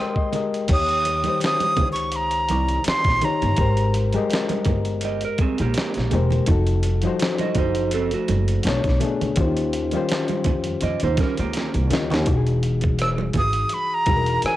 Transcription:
Already playing: reed electric piano G#3 G4 A#4 D#5, flute C6
0.00 reed electric piano G5
0.16 reed electric piano D#5, kick
0.32 reed electric piano G#3 G4 A#4 D#5, closed hi-hat, muted conga, low conga
0.54 closed hi-hat
0.68 upright bass D#2, reed electric piano D#3 D#4 G4 C#5, kick, closed hi-hat, crash, muted conga
0.73 flute D#6
0.89 closed hi-hat
1.05 closed hi-hat, muted conga
1.24 reed electric piano D#3 D#4 G4, closed hi-hat, high conga
1.28 reed electric piano C5
1.40 snare, closed hi-hat, muted conga
1.45 flute D#6
1.60 closed hi-hat, high conga
1.76 upright bass C#2, kick, closed hi-hat, muted conga, low conga
1.92 flute C#6, closed hi-hat
2.12 closed hi-hat
2.16 flute A#5
2.31 closed hi-hat
2.49 upright bass C2, closed hi-hat, high conga
2.69 closed hi-hat
2.84 flute C6, muted upright bass stroke, snare, closed hi-hat, muted conga
3.04 upright bass A#1, kick, snare, closed hi-hat
3.21 reed electric piano D#3 D#4 G4 C#5, flute A#5, closed hi-hat, muted conga, low conga
3.42 upright bass G1, closed hi-hat, low conga
3.57 upright bass G#1, reed electric piano G#3 G4 A#4, kick, closed hi-hat
3.61 reed electric piano C5
3.77 closed hi-hat
3.94 closed hi-hat, muted conga
4.13 reed electric piano G#3 G4, closed hi-hat, high conga
4.17 reed electric piano A#4 D#5
4.30 snare, closed hi-hat, muted conga
4.49 closed hi-hat, high conga
4.65 upright bass G1, kick, closed hi-hat, muted conga, low conga
4.85 closed hi-hat
5.01 clean electric guitar G4 D#5, closed hi-hat, muted conga
5.21 clean electric guitar A#4, closed hi-hat
5.38 clean electric guitar C4 G#4, muted upright bass stroke, kick, closed hi-hat, high conga
5.58 upright bass A#1, clean electric guitar A#3 G4, closed hi-hat
5.74 snare, closed hi-hat, muted conga
5.94 upright bass A#1, snare, closed hi-hat
6.11 upright bass E1, reed electric piano G#3 G4 A#4 C5, closed hi-hat, low conga
6.30 closed hi-hat, low conga
6.46 upright bass F1, reed electric piano F3 D#4 F#4, kick, closed hi-hat, muted conga
6.51 reed electric piano A4
6.67 closed hi-hat
6.83 closed hi-hat, muted conga
7.02 reed electric piano F3 D#4, closed hi-hat, high conga
7.06 reed electric piano F#4 C5
7.20 snare, closed hi-hat, muted conga
7.38 clean electric guitar F#4 D#5, closed hi-hat, high conga
7.55 upright bass F#1, clean electric guitar D#4 C5, kick, closed hi-hat, muted conga, low conga
7.75 closed hi-hat
7.91 clean electric guitar C4 A4, closed hi-hat, muted conga
8.11 clean electric guitar A3 F#4, closed hi-hat
8.28 upright bass F#1, closed hi-hat, muted conga, high conga
8.48 closed hi-hat
8.63 upright bass B1, reed electric piano B2 A3, snare, closed hi-hat, muted conga
8.68 reed electric piano D4 C#5
8.84 upright bass B1, kick, snare, closed hi-hat
9.00 reed electric piano B2 A3 D4, closed hi-hat, low conga
9.05 reed electric piano G#4
9.21 upright bass D2, closed hi-hat, low conga
9.36 upright bass D#2, reed electric piano D#3 C#4 F4, kick, closed hi-hat
9.40 reed electric piano G4 C5
9.57 closed hi-hat
9.73 closed hi-hat
9.91 reed electric piano D#3 C#4 F4, closed hi-hat, high conga
9.96 reed electric piano G4 C5
10.09 snare, closed hi-hat
10.28 closed hi-hat, high conga
10.44 upright bass F2, kick, closed hi-hat, muted conga, low conga
10.64 closed hi-hat, high conga
10.81 upright bass F2, clean electric guitar G4 D#5, closed hi-hat, muted conga
11.00 upright bass D#2, clean electric guitar C5, closed hi-hat
11.04 clean electric guitar D#4
11.17 clean electric guitar C#4 A#4, kick, snare, closed hi-hat, high conga
11.37 upright bass C#2, clean electric guitar A#3 G4, closed hi-hat
11.53 snare, closed hi-hat
11.74 upright bass C2, closed hi-hat
11.90 upright bass D2, reed electric piano D#3 C#4 F4 G4, snare, closed hi-hat, muted conga, low conga
11.94 reed electric piano D#5
12.10 upright bass D#2, snare, closed hi-hat, low conga
12.26 upright bass E1, reed electric piano E3 D#4 F#4, kick, closed hi-hat
12.31 reed electric piano G4
12.37 reed electric piano G#4
12.46 closed hi-hat
12.63 closed hi-hat
12.81 kick, closed hi-hat, high conga
12.98 cross-stick, closed hi-hat, muted conga
13.03 flute E6
13.18 high conga
13.33 upright bass G#1, kick, closed hi-hat, muted conga, low conga
13.38 flute D#6
13.53 closed hi-hat
13.69 closed hi-hat, muted conga
13.74 flute B5
13.94 flute A#5
14.06 upright bass E1, reed electric piano E3 D#4 F#4, kick, cross-stick, closed hi-hat, high conga
14.10 reed electric piano G#4
14.17 reed electric piano A#4
14.26 closed hi-hat
14.42 flute G#5, muted upright bass stroke, cross-stick, closed hi-hat

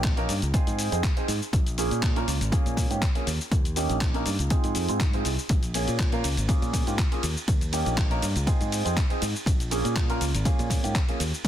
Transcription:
Already playing: fingered electric bass A#1, grand piano A#3 C#4 D#4 G4
0.04 kick, clap, closed hi-hat, shaker
0.17 grand piano A#3 C#4 D#4 A#4, closed hi-hat
0.29 fingered electric bass G2, open hi-hat, shaker
0.42 fingered electric bass C#2, closed hi-hat, shaker
0.54 grand piano C4 D#4 F4 G#4, kick, closed hi-hat, shaker
0.67 fingered electric bass G#2, closed hi-hat, shaker
0.79 open hi-hat, shaker
0.92 fingered electric bass F2, grand piano C4 D#4 F4 G#4, closed hi-hat, shaker
1.03 kick, clap, closed hi-hat, shaker
1.17 grand piano C4 D#4 F4 G#4, closed hi-hat
1.28 fingered electric bass G#2, open hi-hat, shaker
1.42 shaker
1.53 fingered electric bass A#1, kick, closed hi-hat, shaker
1.67 closed hi-hat, shaker
1.78 grand piano A#3 C#4 F4 G#4, open hi-hat, shaker
1.91 fingered electric bass A#2, closed hi-hat, shaker
2.03 kick, clap, closed hi-hat, shaker
2.16 grand piano A#3 C#4 F4 A#4, closed hi-hat
2.28 fingered electric bass C#2, open hi-hat, shaker
2.41 fingered electric bass G#1, closed hi-hat, shaker
2.52 grand piano A#3 C#4 F4 G#4, kick, closed hi-hat, shaker
2.66 fingered electric bass A#2, closed hi-hat, shaker
2.77 kick, open hi-hat, shaker
2.90 fingered electric bass G#2, grand piano A#3 C#4 F4 G4, closed hi-hat, shaker
3.02 kick, clap, closed hi-hat, shaker
3.15 grand piano A#3 C#4 F4 G#4, closed hi-hat
3.27 fingered electric bass D#2, open hi-hat, shaker
3.41 shaker
3.51 fingered electric bass D#2, kick, closed hi-hat, shaker
3.65 closed hi-hat, shaker
3.76 grand piano A#3 C#4 D#4 G4, open hi-hat, shaker
3.90 fingered electric bass A#1, closed hi-hat, shaker
4.01 kick, clap, closed hi-hat, shaker
4.14 grand piano A#3 C#4 D#4 A#4, closed hi-hat
4.26 fingered electric bass G2, open hi-hat, shaker
4.39 fingered electric bass C#2, closed hi-hat, shaker
4.50 grand piano C4 D#4 F4 G#4, kick, closed hi-hat, shaker
4.64 fingered electric bass G#2, closed hi-hat, shaker
4.75 fingered electric bass F2, open hi-hat, shaker
4.88 fingered electric bass G#2, grand piano C4 D#4 F4 G#4, closed hi-hat, shaker
5.00 kick, clap, closed hi-hat, shaker
5.13 grand piano C4 D#4 F4 G#4, closed hi-hat
5.25 fingered electric bass C2, open hi-hat, shaker
5.39 shaker
5.49 fingered electric bass A#1, kick, closed hi-hat, ride, shaker
5.63 closed hi-hat, shaker
5.74 grand piano A#3 C#4 F4 G#4, open hi-hat, ride, shaker
5.88 fingered electric bass A#2, closed hi-hat, shaker
5.99 kick, clap, closed hi-hat, ride, shaker
6.12 grand piano A#3 C#4 F4 A#4, closed hi-hat
6.24 fingered electric bass C#2, open hi-hat, ride, shaker
6.37 fingered electric bass G#1, closed hi-hat, shaker
6.48 grand piano A#3 C#4 F4 G#4, kick, closed hi-hat, ride, shaker
6.62 fingered electric bass A#2, closed hi-hat, shaker
6.73 kick, open hi-hat, ride, shaker
6.87 fingered electric bass G#2, grand piano A#3 C#4 F4 G4, closed hi-hat, shaker
6.98 kick, clap, closed hi-hat, ride, shaker
7.12 grand piano A#3 C#4 F4 G#4, closed hi-hat
7.23 fingered electric bass D#2, open hi-hat, ride, shaker
7.37 shaker
7.48 fingered electric bass D#2, kick, closed hi-hat, ride, shaker
7.61 closed hi-hat, shaker
7.72 grand piano A#3 C#4 D#4 G4, open hi-hat, ride, shaker
7.86 fingered electric bass A#1, closed hi-hat, shaker
7.97 kick, clap, closed hi-hat, ride, shaker
8.10 grand piano A#3 C#4 D#4 A#4, closed hi-hat
8.22 fingered electric bass G2, open hi-hat, ride, shaker
8.36 fingered electric bass C#2, closed hi-hat, shaker
8.47 grand piano C4 D#4 F4 G#4, kick, closed hi-hat, ride, shaker
8.61 fingered electric bass G#2, closed hi-hat, shaker
8.72 open hi-hat, ride, shaker
8.85 fingered electric bass F2, grand piano C4 D#4 F4 G#4, closed hi-hat, shaker
8.97 kick, clap, closed hi-hat, ride, shaker
9.10 grand piano C4 D#4 F4 G#4, closed hi-hat
9.22 fingered electric bass G#2, open hi-hat, ride, shaker
9.36 shaker
9.46 fingered electric bass A#1, kick, closed hi-hat, ride, shaker
9.60 closed hi-hat, shaker
9.71 grand piano A#3 C#4 F4 G#4, open hi-hat, ride, shaker
9.85 fingered electric bass A#2, closed hi-hat, shaker
9.96 kick, clap, closed hi-hat, ride, shaker
10.09 grand piano A#3 C#4 F4 A#4, closed hi-hat
10.21 fingered electric bass C#2, open hi-hat, ride, shaker
10.35 fingered electric bass G#1, closed hi-hat, shaker
10.45 grand piano A#3 C#4 F4 G#4, kick, closed hi-hat, ride, shaker
10.59 fingered electric bass A#2, closed hi-hat, shaker
10.70 kick, open hi-hat, ride, shaker
10.83 fingered electric bass G#2, grand piano A#3 C#4 F4 G4, closed hi-hat, shaker
10.95 kick, clap, closed hi-hat, ride, shaker
11.08 grand piano A#3 C#4 F4 G#4, closed hi-hat
11.20 fingered electric bass D#2, open hi-hat, ride, shaker
11.34 shaker
11.45 fingered electric bass D#2, kick, closed hi-hat, ride

